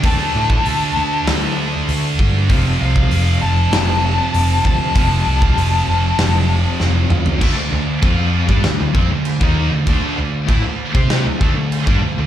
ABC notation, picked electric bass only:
X:1
M:4/4
L:1/16
Q:1/4=98
K:Dm
V:1 name="Picked electric bass" clef=bass
D,,2 A,,2 D,,2 D,,2 D,,4 D,,2 G,,2 | F,,,2 C,,2 F,,,2 F,,,2 F,,,4 F,,,2 D,,2 | F,,,2 C,,2 F,,,2 F,,,2 F,,,4 F,,,2 D,,2 | D,, D,, D,,2 F,,3 G,, D,, D,, F,, D,,2 _E,,2 D,, |
D,,2 D,,2 A,, D,,2 C,2 D,, D,, D,,2 G,, D,, D,, |]